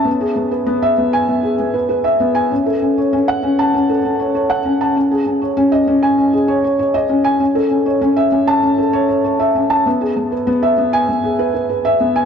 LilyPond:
\new Staff \with { instrumentName = "Felt piano" } { \time 4/4 \key e \major \tempo 4 = 98 b16 gis'16 b16 b'16 b16 e''16 b16 gis''16 b16 gis'16 b16 b'16 b'16 e''16 b16 gis''16 | cis'16 a'16 cis'16 cis''16 cis'16 fis''16 cis'16 a''16 cis'16 a'16 cis'16 cis''16 cis''16 fis''16 cis'16 a''16 | cis'16 gis'16 cis'16 cis''16 cis'16 dis''16 cis'16 gis''16 cis'16 gis'16 cis''16 cis''16 cis''16 dis''16 cis'16 gis''16 | cis'16 a'16 cis'16 cis''16 cis'16 e''16 cis'16 a''16 cis'16 a'16 cis''16 cis''16 cis''16 e''16 cis'16 a''16 |
b16 gis'16 b16 b'16 b16 e''16 b16 gis''16 b16 gis'16 b'16 b'16 b'16 e''16 b16 gis''16 | }